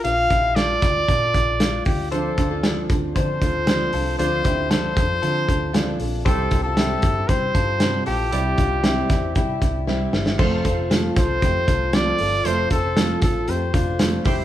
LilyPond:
<<
  \new Staff \with { instrumentName = "Trumpet" } { \time 4/4 \key f \major \tempo 4 = 116 f''4 d''2~ d''8 g'8 | a'4. r8 c''2 | c''4 c''2~ c''8 r8 | a'8. a'4~ a'16 c''4. g'8~ |
g'2. r4 | r4. c''4. d''4 | c''8 a'4 a'8 c''4. r8 | }
  \new Staff \with { instrumentName = "Synth keys" } { \time 4/4 \key f \major r1 | <d' f' c''>1 | <d' f' c''>1 | <e' g' c''>1 |
<e' g' d''>1 | <f' a' c''>1 | <f' a' c''>2.~ <f' a' c''>8 <e' g' c''>8 | }
  \new Staff \with { instrumentName = "Clean electric guitar" } { \time 4/4 \key f \major <d' f'>8 <e' g'>8 <f' a'>4 <f' a'>4 <d' f'>4 | <a' c''>8. <f' a'>16 <f' a'>4 <a' c''>8 <f' a'>4 <f' a'>8 | <d' f'>8 <e' g'>8 <f' a'>4 <f' a'>4 <d' f'>4 | <g' c''>8. <f' a'>16 <e' g'>4 <g' c''>8 <f' a'>4 <f' a'>8 |
<e' g'>8 <d' f'>8 <c' e'>4 <e' g'>4 <c' e'>4 | <a' c''>8 <a' c''>8 <f' a'>8 <f' a'>8 <c' g'>8 <f' a'>8 <c' f'>8 <f' a'>8 | <a' c''>8 <a' c''>8 <f' a'>8 <f' a'>8 <c' g'>8 <d' f'>4 <e' g'>8 | }
  \new Staff \with { instrumentName = "Steel-string acoustic guitar" } { \time 4/4 \key f \major r1 | <d f c' d' a'>8 <c' d' a'>8 <d f c' d' a'>8 <c' d' a'>8 <f c' d' a'>8 <c' d' a'>8 <d f c' d' a'>8 <c' d' a'>8 | <d f c' d' a'>8 <c' d' a'>8 <d f c' d' a'>8 <c' d' a'>8 <f c' d' a'>8 <c' d' a'>8 <d f c' d' a'>8 <c' d' a'>8 | <c g c' e' g'>8 <c' e' g'>8 <c g c' e' g'>8 <e' g'>8 <g c' e' g'>8 <c' g'>8 <c g c' e' g'>8 c'8 |
<c g c' e' g'>8 <c' e' g'>8 <c g c' e' g'>8 <c' e' g'>8 <g c' e' g'>8 <c' e' g'>8 <c g c' e' g'>8 g'8 | <f a c' f' a'>8 <c' f' a'>8 <f a c' f' a'>8 <c' f' a'>8 <a c' f' a'>8 <c' f' a'>8 <f a c' f' a'>8 <c' f' a'>8 | <f a c' f' a'>8 <c' f' a'>8 <f a c' f' a'>8 <c' f' a'>8 <a c' f' a'>8 <c' f' a'>8 <f a c' f' a'>8 <g c' g'>8 | }
  \new Staff \with { instrumentName = "Fingered electric bass" } { \clef bass \time 4/4 \key f \major bes,,8 bes,,4 d,8 bes,8 bes,,4 d,8~ | d,8 d,4 d,8 d8 d,4 c,8 | d,8 d,4 f,8 d8 d,4 bes,,8 | c,8 c,4 g,8 c8 g,4 bes,,8 |
c,8 c,4 e,8 c8 c,4 g,,8 | f,,8 f,,4 c,8 f,8 c,4 g,,8 | f,,8 f,,4 a,,8 f,8 f,,4 e,,8 | }
  \new DrumStaff \with { instrumentName = "Drums" } \drummode { \time 4/4 hh8 <hh bd>8 <hh sn>8 <hh bd sn>8 <hh bd>8 <hh bd>8 <hh sn>8 <hho bd>8 | hh8 <hh bd>8 <hh sn>8 <hh bd>8 <hh bd>8 <hh bd>8 <hh sn>8 hho8 | hh8 <hh bd>8 <hh sn>8 <hh bd>8 hh8 <hh bd>8 <hh sn>8 hho8 | <hh bd>8 <hh bd>8 <hh sn>8 <hh bd>8 <hh bd>8 <hh bd>8 <hh sn>8 hho8 |
hh8 <hh bd>8 <hh sn>8 <hh bd sn>8 <hh bd>8 <hh bd>8 sn8 sn16 sn16 | <cymc bd>8 <hh bd>8 <hh sn>8 <hh bd sn>8 <hh bd>8 <hh bd>8 <hh sn>8 hho8 | hh8 <hh bd>8 <hh sn>8 <hh bd>8 hh8 <hh bd>8 <hh sn>8 <hho bd>8 | }
>>